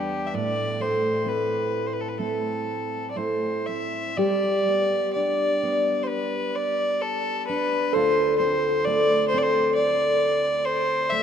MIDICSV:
0, 0, Header, 1, 4, 480
1, 0, Start_track
1, 0, Tempo, 928793
1, 167, Time_signature, 4, 2, 24, 8
1, 1131, Tempo, 1003344
1, 2091, Tempo, 955414
1, 3051, Tempo, 918836
1, 4971, Tempo, 888889
1, 5752, End_track
2, 0, Start_track
2, 0, Title_t, "Fiddle"
2, 0, Program_c, 0, 110
2, 0, Note_on_c, 0, 67, 68
2, 140, Note_on_c, 0, 76, 61
2, 147, Note_off_c, 0, 67, 0
2, 178, Note_on_c, 0, 74, 76
2, 186, Note_off_c, 0, 76, 0
2, 417, Note_on_c, 0, 72, 66
2, 425, Note_off_c, 0, 74, 0
2, 661, Note_on_c, 0, 71, 65
2, 668, Note_off_c, 0, 72, 0
2, 962, Note_on_c, 0, 72, 53
2, 969, Note_off_c, 0, 71, 0
2, 996, Note_on_c, 0, 71, 53
2, 1004, Note_off_c, 0, 72, 0
2, 1038, Note_on_c, 0, 69, 57
2, 1046, Note_off_c, 0, 71, 0
2, 1077, Note_on_c, 0, 71, 53
2, 1085, Note_off_c, 0, 69, 0
2, 1128, Note_off_c, 0, 71, 0
2, 1141, Note_on_c, 0, 69, 53
2, 1555, Note_off_c, 0, 69, 0
2, 1570, Note_on_c, 0, 74, 51
2, 1599, Note_on_c, 0, 72, 58
2, 1606, Note_off_c, 0, 74, 0
2, 1837, Note_on_c, 0, 76, 68
2, 1844, Note_off_c, 0, 72, 0
2, 2079, Note_on_c, 0, 74, 82
2, 2087, Note_off_c, 0, 76, 0
2, 2560, Note_off_c, 0, 74, 0
2, 2563, Note_on_c, 0, 74, 75
2, 3012, Note_on_c, 0, 72, 55
2, 3019, Note_off_c, 0, 74, 0
2, 3033, Note_on_c, 0, 71, 72
2, 3041, Note_off_c, 0, 72, 0
2, 3286, Note_on_c, 0, 74, 80
2, 3293, Note_off_c, 0, 71, 0
2, 3525, Note_on_c, 0, 69, 78
2, 3533, Note_off_c, 0, 74, 0
2, 3758, Note_off_c, 0, 69, 0
2, 3762, Note_on_c, 0, 71, 79
2, 4004, Note_on_c, 0, 72, 86
2, 4012, Note_off_c, 0, 71, 0
2, 4236, Note_off_c, 0, 72, 0
2, 4239, Note_on_c, 0, 72, 77
2, 4483, Note_on_c, 0, 74, 91
2, 4490, Note_off_c, 0, 72, 0
2, 4706, Note_off_c, 0, 74, 0
2, 4709, Note_on_c, 0, 72, 87
2, 4758, Note_on_c, 0, 74, 71
2, 4766, Note_off_c, 0, 72, 0
2, 4784, Note_on_c, 0, 72, 87
2, 4792, Note_off_c, 0, 74, 0
2, 4950, Note_off_c, 0, 72, 0
2, 4953, Note_on_c, 0, 74, 93
2, 5440, Note_on_c, 0, 72, 92
2, 5448, Note_off_c, 0, 74, 0
2, 5679, Note_on_c, 0, 76, 98
2, 5687, Note_off_c, 0, 72, 0
2, 5752, Note_off_c, 0, 76, 0
2, 5752, End_track
3, 0, Start_track
3, 0, Title_t, "Tine electric piano"
3, 0, Program_c, 1, 4
3, 2088, Note_on_c, 1, 67, 65
3, 3991, Note_off_c, 1, 67, 0
3, 4003, Note_on_c, 1, 69, 87
3, 5752, Note_off_c, 1, 69, 0
3, 5752, End_track
4, 0, Start_track
4, 0, Title_t, "Steel-string acoustic guitar"
4, 0, Program_c, 2, 25
4, 0, Note_on_c, 2, 40, 70
4, 0, Note_on_c, 2, 55, 47
4, 0, Note_on_c, 2, 59, 43
4, 0, Note_on_c, 2, 62, 57
4, 164, Note_off_c, 2, 40, 0
4, 174, Note_on_c, 2, 45, 67
4, 214, Note_off_c, 2, 59, 0
4, 215, Note_off_c, 2, 55, 0
4, 218, Note_off_c, 2, 62, 0
4, 412, Note_on_c, 2, 57, 51
4, 642, Note_off_c, 2, 57, 0
4, 649, Note_on_c, 2, 57, 47
4, 651, Note_on_c, 2, 60, 46
4, 655, Note_on_c, 2, 64, 47
4, 1126, Note_off_c, 2, 57, 0
4, 1128, Note_off_c, 2, 60, 0
4, 1131, Note_off_c, 2, 64, 0
4, 1132, Note_on_c, 2, 57, 40
4, 1135, Note_on_c, 2, 60, 41
4, 1137, Note_on_c, 2, 64, 46
4, 1590, Note_off_c, 2, 57, 0
4, 1595, Note_off_c, 2, 60, 0
4, 1595, Note_on_c, 2, 57, 40
4, 1600, Note_off_c, 2, 64, 0
4, 1600, Note_on_c, 2, 60, 39
4, 1606, Note_on_c, 2, 64, 42
4, 1842, Note_off_c, 2, 60, 0
4, 1847, Note_on_c, 2, 60, 36
4, 2081, Note_on_c, 2, 55, 62
4, 2083, Note_off_c, 2, 64, 0
4, 2085, Note_on_c, 2, 67, 51
4, 2095, Note_off_c, 2, 45, 0
4, 2136, Note_off_c, 2, 57, 0
4, 2140, Note_off_c, 2, 60, 0
4, 2339, Note_on_c, 2, 59, 48
4, 2577, Note_on_c, 2, 62, 49
4, 2807, Note_off_c, 2, 59, 0
4, 2813, Note_on_c, 2, 59, 48
4, 3774, Note_off_c, 2, 62, 0
4, 3776, Note_on_c, 2, 62, 52
4, 4008, Note_off_c, 2, 55, 0
4, 4010, Note_off_c, 2, 67, 0
4, 4016, Note_on_c, 2, 38, 75
4, 4019, Note_on_c, 2, 65, 60
4, 4059, Note_off_c, 2, 59, 0
4, 4248, Note_on_c, 2, 60, 57
4, 4264, Note_off_c, 2, 62, 0
4, 4494, Note_on_c, 2, 57, 52
4, 4735, Note_off_c, 2, 60, 0
4, 4740, Note_on_c, 2, 60, 58
4, 5688, Note_off_c, 2, 57, 0
4, 5694, Note_on_c, 2, 57, 61
4, 5752, Note_off_c, 2, 38, 0
4, 5752, Note_off_c, 2, 57, 0
4, 5752, Note_off_c, 2, 60, 0
4, 5752, Note_off_c, 2, 65, 0
4, 5752, End_track
0, 0, End_of_file